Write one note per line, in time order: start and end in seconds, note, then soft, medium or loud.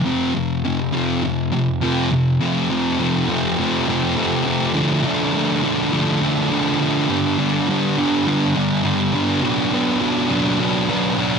0.05 0.33 F2 medium
0.05 0.33 C3 medium
0.05 0.33 F3 loud
0.34 0.61 F2 medium
0.34 0.61 C3 medium
0.64 0.91 F2 medium
0.64 0.91 C3 medium
0.93 1.21 F2 medium
0.93 1.21 C3 medium
0.93 1.21 F3 medium
1.23 1.49 F2 medium
1.23 1.49 C3 medium
1.52 1.79 F2 medium
1.52 1.79 C3 medium
1.81 2.09 F2 medium
1.81 2.09 C3 medium
1.81 2.09 F3 medium
2.11 2.38 F2 medium
2.11 2.38 C3 medium
2.40 2.69 F2 medium
2.40 2.69 C3 medium
2.40 2.71 F3 medium
2.40 2.71 A3 medium
2.40 2.71 C4 medium
2.70 2.98 F2 medium
2.70 2.99 C3 medium
2.70 3.00 F3 medium
2.70 3.00 A3 medium
2.70 3.00 C4 medium
2.99 3.27 F2 medium
2.99 3.28 C3 medium
2.99 3.29 F3 loud
2.99 3.29 A3 medium
2.99 3.29 C4 medium
3.28 3.57 F2 medium
3.28 3.57 C3 medium
3.28 3.57 F3 medium
3.28 3.58 A3 medium
3.28 3.58 C4 medium
3.58 3.86 F2 medium
3.58 3.87 C3 medium
3.58 3.87 F3 medium
3.58 3.88 A3 medium
3.58 3.88 C4 medium
3.87 4.15 F2 medium
3.87 4.16 C3 medium
3.87 4.16 F3 medium
3.87 4.16 A3 medium
3.87 4.17 C4 medium
4.16 4.44 F2 medium
4.16 4.45 C3 medium
4.16 4.45 F3 medium
4.16 4.45 A3 medium
4.16 4.46 C4 medium
4.45 4.73 F2 medium
4.45 4.73 C3 medium
4.45 4.74 F3 medium
4.45 4.74 A3 medium
4.45 4.74 C4 loud
4.75 5.03 D3 loud
4.75 5.04 F3 medium
4.75 5.03 A3 loud
4.75 5.05 D4 medium
5.04 5.32 D3 medium
5.04 5.33 F3 medium
5.04 5.33 A3 medium
5.04 5.34 D4 medium
5.33 5.62 D3 medium
5.33 5.62 F3 medium
5.33 5.62 A3 medium
5.33 5.64 D4 medium
5.63 5.91 D3 medium
5.63 5.91 F3 medium
5.63 5.91 A3 medium
5.63 5.93 D4 medium
5.92 6.20 D3 medium
5.92 6.20 F3 medium
5.92 6.21 A3 medium
5.92 6.22 D4 medium
6.21 6.49 D3 medium
6.21 6.50 F3 medium
6.21 6.50 A3 medium
6.21 6.51 D4 medium
6.50 6.79 D3 medium
6.50 6.79 F3 medium
6.50 6.80 A3 medium
6.50 6.81 D4 medium
6.80 7.07 D3 medium
6.80 7.08 F3 medium
6.80 7.08 A3 medium
6.80 7.10 D4 medium
7.09 7.36 G2 loud
7.09 7.37 D3 loud
7.09 7.38 G3 loud
7.09 7.39 B3 medium
7.09 7.39 D4 loud
7.38 7.66 G2 medium
7.38 7.67 D3 medium
7.38 7.67 G3 medium
7.38 7.69 B3 medium
7.38 7.69 D4 medium
7.67 7.96 G2 medium
7.67 7.96 D3 medium
7.67 7.97 G3 medium
7.67 7.98 B3 medium
7.67 7.98 D4 loud
7.97 8.24 G2 medium
7.97 8.25 D3 medium
7.97 8.25 G3 medium
7.97 8.26 B3 medium
7.97 8.26 D4 medium
8.26 8.54 G2 medium
8.26 8.55 D3 medium
8.26 8.55 G3 medium
8.26 8.55 B3 medium
8.26 8.56 D4 medium
8.55 8.82 G2 medium
8.55 8.83 D3 loud
8.55 8.83 G3 loud
8.55 8.84 B3 medium
8.55 8.84 D4 loud
8.83 9.12 G2 medium
8.83 9.12 D3 medium
8.83 9.13 G3 medium
8.83 9.13 B3 medium
8.83 9.14 D4 medium
9.13 9.41 G2 medium
9.13 9.41 D3 medium
9.13 9.42 G3 medium
9.13 9.42 B3 medium
9.13 9.42 D4 medium
9.42 9.71 B2 loud
9.42 9.71 F#3 medium
9.42 9.72 B3 medium
9.42 9.72 D4 loud
9.72 9.99 B2 medium
9.72 9.99 F#3 medium
9.72 10.00 B3 medium
9.72 10.00 D4 loud
10.00 10.29 B2 medium
10.00 10.29 F#3 medium
10.00 10.30 B3 medium
10.00 10.30 D4 loud
10.30 10.58 B2 medium
10.30 10.59 F#3 medium
10.30 10.59 B3 medium
10.30 10.60 D4 medium
10.59 10.88 B2 medium
10.59 10.89 F#3 loud
10.59 10.89 B3 medium
10.59 10.90 D4 medium
10.89 11.17 B2 medium
10.89 11.17 F#3 loud
10.89 11.18 B3 loud
10.89 11.18 D4 medium
11.18 11.39 B2 medium
11.18 11.39 F#3 medium
11.18 11.39 B3 medium
11.18 11.39 D4 medium